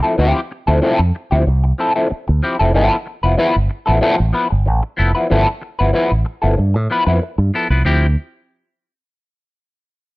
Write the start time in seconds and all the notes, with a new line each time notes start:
0.03 F3 C4 E4 A4
0.18 D2 F3 C4 E4 G4
0.51 muted clean electric guitar stroke
0.67 D2 F3 C4 E4 A4
0.82 F3 C4 E4 A4
0.99 F2
1.15 muted clean electric guitar stroke
1.31 D2 F3 C4 E4 G4
1.47 C2, muted clean electric guitar stroke
1.64 muted clean electric guitar stroke
1.78 F3 C4 E4 A4
1.96 F3 C4 E4 A4
2.10 muted clean electric guitar stroke, muted fingered electric bass stroke
2.28 D2, muted clean electric guitar stroke
2.43 F3 C4 E4 G4
2.59 F1 F3 C4 E4 A4
2.74 G1 F3 B3 E4 A4
3.06 muted clean electric guitar stroke
3.23 F1 F3 B3 E4 B4
3.37 F3 B3 E4 B4
3.56 G1
3.70 muted clean electric guitar stroke
3.86 A1 F3 B3 E4 A4
4.01 F3 B3 E4 A4
4.18 A1, muted clean electric guitar stroke
4.33 F3 B3 E4 B4
4.50 G1, muted clean electric guitar stroke
4.66 A1, muted clean electric guitar stroke
4.83 muted clean electric guitar stroke
4.97 F1 F3 B3 E4 A4
5.15 F3 B3 E4 B4
5.30 G1 F3 B3 E4 A4
5.62 muted clean electric guitar stroke
5.79 G1 F3 B3 E4 B4
5.93 F3 B3 E4 B4
6.12 A1
6.25 muted clean electric guitar stroke
6.42 G1 F3 B3 E4 A4
6.57 G2, muted clean electric guitar stroke
6.74 A2, muted clean electric guitar stroke
6.90 F3 B3 E4 B4
7.06 F2 F3 B3 E4 B4
7.22 muted clean electric guitar stroke
7.38 G2, muted clean electric guitar stroke
7.54 F3 B3 E4 A4
7.70 C2 F3 B3 E4 B4
7.85 D2 F3 C4 E4 G4